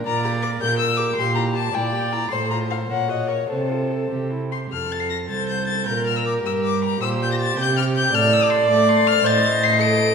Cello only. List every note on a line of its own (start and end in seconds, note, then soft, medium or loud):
0.07 0.56 A#2 medium
0.63 1.11 A#2 medium
1.18 1.67 A#2 medium
1.74 2.24 A#2 medium
2.31 2.82 A2 medium
2.89 3.42 A#2 medium
3.49 4.04 C3 medium
4.11 4.65 C3 soft
4.71 5.31 F2 medium
5.29 5.87 C2 medium
5.87 6.43 A#2 medium
6.44 7.00 G2 medium
7.01 7.56 A#2 medium
7.57 8.12 C3 medium
8.14 8.68 A2 medium
8.70 9.24 A3 medium
9.26 10.15 A2 medium